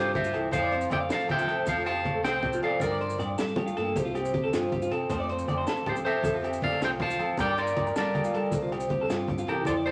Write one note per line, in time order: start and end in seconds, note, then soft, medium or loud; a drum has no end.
0.00 0.30 G2 medium
0.00 0.15 C3 medium
0.00 0.52 G3 medium
0.00 0.70 C4 medium
0.00 0.14 F4 medium
0.00 2.89 F4 medium
0.00 0.14 G4 medium
0.00 0.14 C5 medium
0.00 0.52 C5 medium
0.14 0.32 D3 medium
0.14 0.24 G4 medium
0.14 0.50 C5 medium
0.14 0.53 E5 medium
0.14 kick medium
0.14 closed hi-hat soft
0.14 high conga medium
0.14 low conga medium
0.14 maracas soft
0.24 0.34 F4 medium
0.24 maracas medium
0.32 0.51 C2 medium
0.32 0.51 E3 medium
0.32 0.52 A4 medium
0.32 closed hi-hat medium
0.32 low agogo medium
0.51 0.87 F2 medium
0.51 1.65 F3 medium
0.51 1.08 A4 medium
0.51 0.88 C5 medium
0.51 0.63 C5 medium
0.51 0.89 F5 medium
0.51 kick medium
0.51 closed hi-hat medium
0.51 high conga medium
0.51 low conga medium
0.51 low agogo medium
0.51 maracas medium
0.63 0.72 D5 medium
0.71 1.46 C4 medium
0.71 0.91 C5 medium
0.71 closed hi-hat soft
0.81 low conga soft
0.81 maracas medium
0.90 1.08 F2 medium
0.90 2.03 A3 medium
0.90 1.00 D5 medium
0.90 0.97 E5 medium
0.90 0.98 G5 medium
0.90 closed hi-hat medium
0.90 high conga medium
0.90 low conga medium
0.90 low agogo medium
0.90 maracas soft
1.00 1.10 F5 medium
1.09 1.44 F3 loud
1.09 1.65 A4 medium
1.09 1.28 A4 medium
1.09 1.29 F5 medium
1.09 1.30 A5 loud
1.09 snare medium
1.09 closed hi-hat medium
1.09 maracas medium
1.20 maracas soft
1.28 1.67 C3 medium
1.28 1.38 G4 medium
1.28 1.66 E5 medium
1.28 1.66 G5 loud
1.28 closed hi-hat soft
1.28 high conga medium
1.28 low conga medium
1.28 low agogo medium
1.39 1.48 F4 medium
1.39 maracas medium
1.47 1.69 F3 loud
1.47 1.84 C4 medium
1.47 1.66 A4 medium
1.47 snare soft
1.47 closed hi-hat medium
1.47 low conga soft
1.47 low agogo medium
1.66 2.19 F2 medium
1.66 3.42 F3 medium
1.66 2.22 A4 medium
1.66 1.76 A4 medium
1.66 1.86 C5 medium
1.66 1.85 F5 medium
1.66 kick medium
1.66 closed hi-hat medium
1.66 high conga medium
1.66 low conga medium
1.66 maracas medium
1.77 1.86 F4 medium
1.85 2.61 C4 medium
1.85 2.04 G4 medium
1.85 2.22 F5 medium
1.85 2.22 A5 medium
1.85 closed hi-hat soft
1.85 low agogo medium
1.85 maracas soft
2.04 2.79 A3 medium
2.04 2.14 G4 medium
2.04 closed hi-hat soft
2.04 high conga medium
2.04 low conga medium
2.14 2.24 A4 medium
2.23 2.58 C2 medium
2.23 2.81 A4 medium
2.23 2.60 C5 medium
2.23 2.60 G5 medium
2.23 snare medium
2.23 closed hi-hat medium
2.23 low agogo medium
2.23 maracas medium
2.34 low conga soft
2.43 2.79 C3 medium
2.43 2.52 G4 medium
2.43 kick medium
2.43 closed hi-hat soft
2.43 high conga medium
2.43 low conga medium
2.53 2.62 F4 medium
2.53 maracas medium
2.62 2.79 F3 medium
2.62 2.81 C4 medium
2.62 2.80 A4 medium
2.62 2.80 D5 medium
2.62 2.81 F5 medium
2.62 closed hi-hat soft
2.62 low agogo medium
2.72 low conga soft
2.80 3.16 G2 medium
2.80 2.91 A#4 medium
2.80 3.22 A#4 medium
2.80 3.24 D5 medium
2.80 muted steel-string acoustic guitar stroke medium
2.80 kick medium
2.80 closed hi-hat medium
2.80 high conga medium
2.80 low conga medium
2.80 low agogo medium
2.80 maracas medium
2.91 3.00 D5 medium
3.01 4.37 F4 medium
3.01 3.19 C5 medium
3.01 closed hi-hat soft
3.09 low conga soft
3.09 maracas medium
3.19 3.37 G2 medium
3.19 3.94 D4 medium
3.19 3.29 D5 medium
3.19 closed hi-hat soft
3.19 low conga medium
3.19 low agogo medium
3.19 maracas soft
3.38 3.57 G3 medium
3.38 3.73 G3 loud
3.38 3.56 A4 medium
3.38 snare medium
3.38 closed hi-hat medium
3.38 maracas medium
3.48 maracas soft
3.56 3.77 A3 medium
3.56 3.66 G4 medium
3.56 closed hi-hat soft
3.56 high conga loud
3.56 low conga loud
3.56 low agogo medium
3.66 3.76 F4 medium
3.66 maracas medium
3.76 3.98 G2 loud
3.76 3.96 A#3 medium
3.76 3.95 A4 medium
3.76 snare soft
3.76 closed hi-hat medium
3.76 low conga soft
3.76 low agogo medium
3.96 4.47 C2 medium
3.96 4.70 C3 medium
3.96 4.04 G4 medium
3.96 4.53 C5 medium
3.96 kick medium
3.96 closed hi-hat medium
3.96 high conga medium
3.96 low conga medium
3.96 maracas medium
4.05 4.14 F4 medium
4.15 4.90 C4 medium
4.15 4.33 G4 medium
4.15 closed hi-hat medium
4.15 low agogo medium
4.15 maracas soft
4.25 maracas medium
4.34 5.10 G3 medium
4.34 4.43 G4 medium
4.34 closed hi-hat medium
4.34 high conga medium
4.34 low conga medium
4.44 4.52 A4 medium
4.53 4.87 G2 loud
4.53 4.71 F4 medium
4.53 5.08 C5 medium
4.53 snare medium
4.53 closed hi-hat medium
4.53 low agogo medium
4.53 maracas medium
4.63 low conga soft
4.71 5.07 C3 medium
4.71 4.81 G4 medium
4.71 kick medium
4.71 closed hi-hat soft
4.71 high conga medium
4.71 low conga medium
4.82 4.91 F4 medium
4.82 maracas medium
4.91 5.08 C3 medium
4.91 5.10 C4 medium
4.91 5.09 A4 medium
4.91 closed hi-hat medium
4.91 low agogo medium
5.01 low conga soft
5.10 5.44 F2 medium
5.10 6.22 F3 medium
5.10 5.48 A3 medium
5.10 5.29 C4 medium
5.10 7.42 F4 medium
5.10 5.66 A4 medium
5.10 5.19 C5 medium
5.10 kick medium
5.10 closed hi-hat medium
5.10 high conga medium
5.10 low conga medium
5.10 low agogo medium
5.10 maracas medium
5.20 5.29 D5 medium
5.29 6.04 C4 medium
5.29 5.48 C5 medium
5.29 closed hi-hat soft
5.39 low conga soft
5.39 maracas medium
5.48 5.65 F2 medium
5.48 5.57 D5 medium
5.48 closed hi-hat medium
5.48 high conga medium
5.48 low agogo medium
5.48 maracas soft
5.58 5.67 C5 medium
5.67 6.01 F3 loud
5.67 5.85 A4 medium
5.67 6.22 A4 medium
5.67 snare medium
5.67 closed hi-hat medium
5.67 maracas medium
5.77 maracas soft
5.86 6.24 C3 medium
5.86 5.95 G4 medium
5.86 5.92 A4 medium
5.86 5.94 C5 medium
5.86 closed hi-hat soft
5.86 high conga loud
5.86 low conga loud
5.86 low agogo medium
5.96 6.05 C4 medium
5.96 maracas medium
6.05 6.26 F3 loud
6.05 6.41 C4 medium
6.05 6.23 A4 medium
6.05 6.58 C5 medium
6.05 6.63 E5 medium
6.05 closed hi-hat soft
6.05 low conga soft
6.05 low agogo medium
6.22 6.76 F2 loud
6.22 7.42 F3 medium
6.22 6.80 A4 medium
6.22 6.33 A4 medium
6.22 kick medium
6.22 closed hi-hat medium
6.22 high conga loud
6.22 low conga medium
6.22 maracas medium
6.34 6.43 F4 medium
6.42 7.19 C4 medium
6.42 6.61 G4 medium
6.42 closed hi-hat soft
6.42 low agogo medium
6.42 maracas soft
6.53 maracas medium
6.61 7.35 A3 medium
6.61 6.72 G4 medium
6.61 6.81 D5 medium
6.61 6.82 F5 medium
6.61 closed hi-hat soft
6.61 high conga loud
6.61 low conga loud
6.73 6.81 A4 medium
6.81 7.15 C2 loud
6.81 7.00 F4 medium
6.81 7.39 A4 medium
6.81 6.89 C5 medium
6.81 snare medium
6.81 closed hi-hat medium
6.81 low agogo medium
6.81 maracas medium
6.85 6.90 G5 loud
6.90 low conga soft
7.00 7.36 C3 medium
7.00 7.10 G4 medium
7.00 7.36 F5 medium
7.00 7.37 A5 loud
7.00 kick medium
7.00 closed hi-hat soft
7.00 high conga medium
7.00 low conga loud
7.10 7.19 F4 medium
7.10 maracas medium
7.19 7.36 F3 medium
7.19 7.39 C4 medium
7.19 7.38 A4 medium
7.19 closed hi-hat medium
7.19 low agogo medium
7.28 low conga soft
7.37 7.73 G2 medium
7.37 8.88 G3 medium
7.37 7.48 A#4 medium
7.37 7.94 A#4 medium
7.37 7.57 D5 medium
7.37 7.59 G5 loud
7.37 kick medium
7.37 closed hi-hat medium
7.37 high conga loud
7.37 low conga loud
7.37 low agogo medium
7.37 maracas medium
7.49 7.57 D5 medium
7.57 8.33 F4 medium
7.57 7.93 A#4 medium
7.57 7.76 C5 medium
7.57 7.97 D5 medium
7.57 closed hi-hat medium
7.57 maracas soft
7.67 low conga soft
7.67 maracas medium
7.76 7.94 G2 medium
7.76 7.86 D5 medium
7.76 kick medium
7.76 closed hi-hat medium
7.76 high conga loud
7.76 low conga loud
7.76 low agogo medium
7.87 7.95 A#4 medium
7.87 maracas soft
7.95 8.30 G3 loud
7.95 8.14 A4 medium
7.95 8.50 A#4 medium
7.95 8.69 A#4 medium
7.95 8.69 D5 medium
7.95 snare medium
7.95 closed hi-hat medium
7.95 low conga soft
7.95 maracas medium
8.14 8.52 D3 medium
8.14 8.24 G4 medium
8.14 closed hi-hat soft
8.14 high conga loud
8.14 low agogo medium
8.24 8.33 F4 medium
8.24 maracas medium
8.34 8.55 G3 loud
8.34 8.51 F4 medium
8.34 8.52 A4 medium
8.34 closed hi-hat medium
8.34 low conga soft
8.34 low agogo medium
8.44 low conga soft
8.51 9.04 C2 medium
8.51 9.07 C3 medium
8.51 9.65 C5 medium
8.51 muted clean electric guitar stroke medium
8.51 kick medium
8.51 closed hi-hat medium
8.51 high conga loud
8.51 low conga medium
8.51 maracas medium
8.63 8.71 F4 medium
8.72 9.84 C4 medium
8.72 8.90 G4 medium
8.72 closed hi-hat soft
8.72 low agogo medium
8.80 maracas medium
8.89 9.66 G3 medium
8.89 9.00 G4 medium
8.89 closed hi-hat soft
8.89 high conga medium
8.89 low conga medium
9.00 9.10 A4 medium
9.00 low conga soft
9.08 9.44 G2 loud
9.08 9.28 C3 medium
9.08 9.28 F4 medium
9.08 snare medium
9.08 closed hi-hat medium
9.08 low agogo medium
9.08 maracas medium
9.27 9.46 D3 medium
9.27 9.38 G4 medium
9.27 kick medium
9.27 closed hi-hat soft
9.27 high conga medium
9.27 low conga medium
9.38 9.48 F4 medium
9.38 maracas medium
9.47 9.65 C3 medium
9.47 9.64 E3 medium
9.47 9.66 G4 medium
9.47 9.66 A4 medium
9.47 9.66 A#4 medium
9.47 closed hi-hat soft
9.47 low agogo medium
9.56 low conga soft
9.64 9.91 F2 medium
9.64 9.91 F3 medium
9.64 9.73 A4 medium
9.64 9.76 C5 medium
9.64 9.72 D5 medium
9.64 kick medium
9.64 closed hi-hat medium
9.64 high conga medium
9.64 low conga medium
9.64 low agogo medium
9.64 maracas medium
9.75 9.86 D5 medium
9.75 low conga soft
9.85 9.91 C4 medium
9.85 9.91 A4 medium
9.85 9.91 C5 medium
9.85 closed hi-hat soft